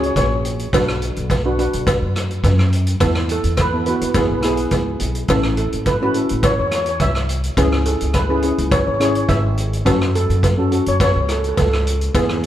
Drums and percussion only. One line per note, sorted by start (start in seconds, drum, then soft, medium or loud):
0.03 closed hi-hat soft
0.16 kick medium
0.16 closed hi-hat medium
0.16 cowbell medium
0.45 closed hi-hat medium
0.59 closed hi-hat medium
0.73 kick medium
0.73 closed hi-hat soft
0.73 cowbell medium
0.88 cross-stick medium
1.02 closed hi-hat medium
1.16 closed hi-hat soft
1.30 kick medium
1.30 closed hi-hat soft
1.30 cowbell medium
1.59 closed hi-hat medium
1.73 closed hi-hat medium
1.87 kick loud
1.87 closed hi-hat medium
1.87 cowbell medium
2.16 cross-stick medium
2.16 closed hi-hat medium
2.31 closed hi-hat soft
2.44 kick medium
2.44 closed hi-hat medium
2.44 cowbell medium
2.59 cross-stick medium
2.73 closed hi-hat medium
2.87 closed hi-hat medium
3.00 kick medium
3.00 closed hi-hat medium
3.00 cowbell medium
3.15 cross-stick medium
3.29 closed hi-hat medium
3.44 closed hi-hat medium
3.57 kick medium
3.57 cross-stick medium
3.57 closed hi-hat medium
3.57 cowbell medium
3.86 closed hi-hat medium
4.01 closed hi-hat medium
4.14 kick loud
4.14 closed hi-hat medium
4.14 cowbell medium
4.42 cross-stick medium
4.42 closed hi-hat medium
4.57 closed hi-hat soft
4.71 kick medium
4.71 closed hi-hat medium
4.71 cowbell medium
5.00 closed hi-hat medium
5.15 closed hi-hat medium
5.28 kick medium
5.28 closed hi-hat soft
5.28 cowbell medium
5.43 cross-stick medium
5.57 closed hi-hat medium
5.72 closed hi-hat medium
5.86 kick medium
5.86 closed hi-hat medium
5.86 cowbell medium
6.14 closed hi-hat medium
6.29 closed hi-hat medium
6.43 kick medium
6.43 closed hi-hat medium
6.43 cowbell medium
6.71 cross-stick medium
6.71 closed hi-hat medium
6.86 closed hi-hat soft
7.00 kick medium
7.00 closed hi-hat medium
7.00 cowbell medium
7.15 cross-stick medium
7.29 closed hi-hat medium
7.43 closed hi-hat medium
7.57 kick loud
7.57 closed hi-hat medium
7.57 cowbell medium
7.72 cross-stick medium
7.85 closed hi-hat medium
8.01 closed hi-hat medium
8.13 kick medium
8.13 cross-stick medium
8.13 closed hi-hat medium
8.13 cowbell medium
8.42 closed hi-hat medium
8.58 closed hi-hat medium
8.71 kick medium
8.71 closed hi-hat medium
8.71 cowbell medium
9.00 cross-stick medium
9.00 closed hi-hat medium
9.15 closed hi-hat medium
9.29 kick medium
9.29 closed hi-hat medium
9.29 cowbell medium
9.57 closed hi-hat medium
9.73 closed hi-hat medium
9.86 kick medium
9.86 closed hi-hat medium
9.86 cowbell medium
10.01 cross-stick medium
10.15 closed hi-hat medium
10.30 closed hi-hat medium
10.43 kick medium
10.43 closed hi-hat medium
10.43 cowbell medium
10.72 closed hi-hat medium
10.86 closed hi-hat medium
11.00 kick loud
11.00 closed hi-hat medium
11.00 cowbell medium
11.29 cross-stick medium
11.29 closed hi-hat medium
11.44 closed hi-hat soft
11.57 kick medium
11.57 closed hi-hat medium
11.57 cowbell medium
11.73 cross-stick medium
11.87 closed hi-hat medium
12.01 closed hi-hat medium
12.14 kick medium
12.14 closed hi-hat medium
12.14 cowbell loud
12.29 cross-stick medium